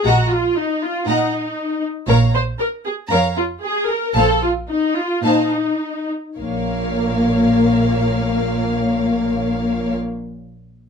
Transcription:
<<
  \new Staff \with { instrumentName = "Violin section" } { \time 4/4 \key bes \minor \tempo 4 = 108 bes''8 r4. bes''8 r4. | bes''8 r4. bes''8 r4. | a''8 r4. a''8 r4. | f''1~ |
f''1 | }
  \new Staff \with { instrumentName = "Violin section" } { \time 4/4 \key bes \minor <ees'' ges''>8 r4. <ees'' ges''>8 r4. | <des'' f''>8 r4. <des'' f''>8 r4. | <c'' f''>8 r4. <c'' f''>8 r4. | <bes' des''>1~ |
<bes' des''>1 | }
  \new Staff \with { instrumentName = "Viola section" } { \time 4/4 \key bes \minor ges'8 f'8 ees'8 f'8 ees'4. r8 | bes'8 c''8 bes'8 aes'8 bes'8 f'8 aes'8 bes'8 | a'8 f'8 ees'8 f'8 ees'4. r8 | bes1~ |
bes1 | }
  \new Staff \with { instrumentName = "Cello section" } { \clef bass \time 4/4 \key bes \minor bes,4 r4 bes,4 r4 | bes,4 r4 f,4 r4 | bes,4 r4 bes,4 r4 | bes,1~ |
bes,1 | }
  \new Staff \with { instrumentName = "Double bass section" } { \clef bass \time 4/4 \key bes \minor bes,,4 r2. | bes,,4 r2. | bes,,4 r2. | bes,,1~ |
bes,,1 | }
>>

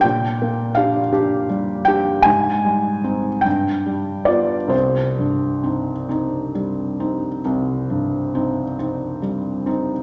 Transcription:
\new Staff \with { instrumentName = "Felt piano" } { \time 12/8 \key c \minor \tempo 4. = 47 << { g''4 f''4. g''8 aes''4. g''4 d''8 | c''1~ c''4. r8 | } \\ { bes,8 bes8 <d' g'>8 <d' g'>8 g8 <d' g'>8 aes,8 g8 <c' ees'>8 g,8 g8 <b f'>8 | c,8 g,8 <c' ees'>8 <c' ees'>8 g8 <c' ees'>8 c,8 g,8 <c' ees'>8 <c' ees'>8 g8 <c' ees'>8 | } >> }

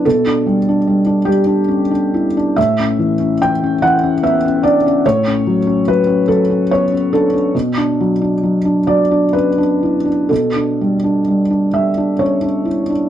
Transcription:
\new Staff \with { instrumentName = "Felt piano" } { \time 6/8 \key g \lydian \tempo 4. = 47 << { a'4. g'4. | e''4 g''8 fis''8 e''8 d''8 | cis''4 b'8 a'8 cis''8 a'8 | r4. d''8 b'4 |
a'4. e''8 cis''4 | } \\ { b,16 d'16 g16 d'16 g16 d'16 g16 d'16 cis'16 d'16 e'16 d'16 | a,16 cis'16 e16 cis'16 e16 cis'16 e16 cis'16 b16 cis'16 d'16 cis'16 | a,16 cis'16 fis16 cis'16 fis16 cis'16 fis16 cis'16 b16 cis'16 d'16 cis'16 | b,16 d'16 fis16 d'16 fis16 d'16 fis16 d'16 cis'16 d'16 e'16 d'16 |
b,16 d'16 g16 d'16 g16 d'16 g16 d'16 cis'16 d'16 e'16 d'16 | } >> }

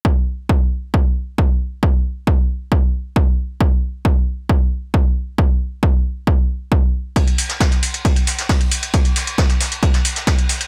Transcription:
\new DrumStaff \with { instrumentName = "Drums" } \drummode { \time 4/4 \tempo 4 = 135 bd4 bd4 bd4 bd4 | bd4 bd4 bd4 bd4 | bd4 bd4 bd4 bd4 | bd4 bd4 bd4 bd4 |
<hh bd cymr>16 hh16 <hho cymr>16 <hh sn>16 <hh bd cymr sn>16 <hh sn>16 <hho cymr>16 hh16 <hh bd cymr>16 hh16 <hho cymr sn>16 <hh sn>16 <hh hho bd sn>16 hh16 <hho cymr>16 hh16 | <hh bd cymr>16 hh16 <hho cymr sn>16 hh16 <hh bd cymr sn>16 <hh sn>16 <hho cymr sn>16 hh16 <hh bd cymr>16 <hh sn>16 <hho cymr>16 <hh sn>16 <hh bd cymr sn>16 hh16 <hho cymr sn>16 hh16 | }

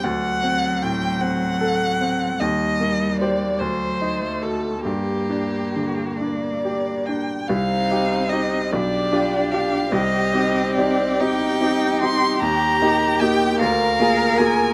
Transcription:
<<
  \new Staff \with { instrumentName = "Violin" } { \time 6/8 \key g \minor \tempo 4. = 50 fis''4 g''8 fis''4. | ees''4 d''8 c''4 a'8 | g'4. d''4 g''8 | \key c \minor f''4 ees''8 d''4 f''8 |
ees''4 d''8 g''4 c'''8 | bes''4 g''8 f''4 aes''8 | }
  \new Staff \with { instrumentName = "Violin" } { \time 6/8 \key g \minor r2. | r2. | r2. | \key c \minor ees'4. g'4.~ |
g'2.~ | g'4. bes'4. | }
  \new Staff \with { instrumentName = "Grand piano" } { \time 6/8 \key g \minor d,8 c'8 a,8 c'8 a'8 c'8 | ees,8 bes8 <g' c''>8 d,8 ees'8 <fis' a'>8 | g,8 d'8 d8 d'8 g'8 d'8 | \key c \minor c,8 <ees' g'>8 <ees' g'>8 b,,8 <d' f' g'>8 <d' f' g'>8 |
c,8 <c' ees' g'>8 <c' ees' g'>8 <c' ees' g'>8 <c' ees' g'>8 <c' ees' g'>8 | ees,8 <bes ees' g'>8 <bes ees' g'>8 d,8 <bes f' aes'>8 <bes f' aes'>8 | }
  \new Staff \with { instrumentName = "Cello" } { \time 6/8 \key g \minor fis2. | g4. fis8. a8. | bes2~ bes8. r16 | \key c \minor c'4. d'4. |
c'4. ees'4. | g'4. bes'4. | }
>>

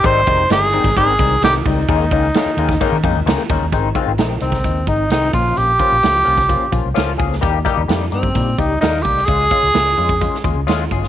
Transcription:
<<
  \new Staff \with { instrumentName = "Tenor saxophone" } { \time 4/4 \key ees \mixolydian \tempo 4 = 130 c''4 aes'4 aes'4 g'8 ees'8~ | ees'2. r4 | r4. c'4 ees'8 ees'8 f'8 | g'2. r4 |
r4. c'4 ees'8 ees'8 g'8 | aes'2. r4 | }
  \new Staff \with { instrumentName = "Tine electric piano" } { \time 4/4 \key ees \mixolydian <ees g aes c' ees'>8 <ees g aes c' ees'>8 <ees g aes c' ees'>8 <ees g aes c' ees'>8 <ees g aes c' ees'>8 <ees g aes c' ees'>8 <ees g aes c' ees'>8 <ees g aes c' ees'>8 | <ees aes bes des' ees'>8 <ees aes bes des' ees'>8 <ees aes bes des' ees'>8 <ees aes bes des' ees'>8 <ees aes bes des' ees'>8 <ees aes bes des' ees'>8 <ees aes bes des' ees'>8 <ees aes bes des' ees'>8 | <ees aes c' ees'>8 <ees aes c' f'>8 <ees aes c' ees'>8 <ees aes c' ees'>8 <ees aes c' ees'>8 <ees aes c' ees'>8 <ees aes c' ees'>8 <f bes des' f'>8~ | <f bes des' f'>8 <f bes des' f'>8 <f bes des' f'>8 <f bes des' f'>8 <f bes des' f'>8 <f bes des' f'>8 <f bes des' f'>8 <f bes des' aes'>8 |
<g bes ees' g'>8 <g bes ees' g'>8 <g bes ees' g'>8 <g bes ees' g'>8 <g bes ees' g'>8 <g bes ees' g'>8 <g bes ees' bes'>8 <g bes ees' g'>8 | <aes des' f' aes'>8 <aes des' f' aes'>8 <aes des' f' aes'>8 <aes des' f' aes'>8 <aes des' f' aes'>8 <aes des' f' aes'>8 <aes des' f' aes'>8 <aes des' f' aes'>8 | }
  \new Staff \with { instrumentName = "Fingered electric bass" } { \clef bass \time 4/4 \key ees \mixolydian aes,,8 f,,8 g,,8. aes,,16 aes,,8 c,8 c,8 des,8 | ees,8 des,8 r8 ees,8 r16 ees16 f,16 ees,16 des,16 r16 ees,16 ees,16 | aes,,8 r16 aes,,16 bes,,8 c,8 ees,8 aes,,8 c,8 bes,,8 | bes,,8 r16 bes,,16 des,8 c,8. r16 bes,,16 c,16 r8 des,8 |
ees,8 r16 ees,16 f,8 g,8 bes,8 des,8 ees,8 c,8 | des,8 r16 des,16 des,8 f,8. r16 ees,16 des,16 ees,8 g,,8 | }
  \new DrumStaff \with { instrumentName = "Drums" } \drummode { \time 4/4 <bd cymr>8 <bd cymr>8 <cymr sn>8 cymr16 <bd sn>16 <bd cymr>8 <bd cymr>8 <cymr sn>8 <bd cymr>8 | <bd cymr>8 <bd cymr>8 <cymr sn>8 cymr16 <bd sn>16 <bd cymr>8 <bd cymr>8 <cymr sn>8 <bd cymr>8 | <hh bd>8 <hh bd>8 <hh sn>8 hh16 <bd sn>16 <hh bd>8 <hh bd>8 <hh sn>8 <hh bd>8 | hh8 <hh bd>8 <hh sn>8 hh16 <bd sn>16 <hh bd>8 <hh bd>8 <hh sn>8 <hh bd>16 sn16 |
<hh bd>8 <hh bd>8 <hh sn>8 hh16 bd16 <hh bd>8 <hh bd>8 <hh sn>8 <hho bd>16 sn16 | <hh bd>8 <hh bd>8 <hh sn>8 hh16 bd16 <hh bd>16 sn16 <hh bd>8 <hh sn>8 <hh bd>16 sn16 | }
>>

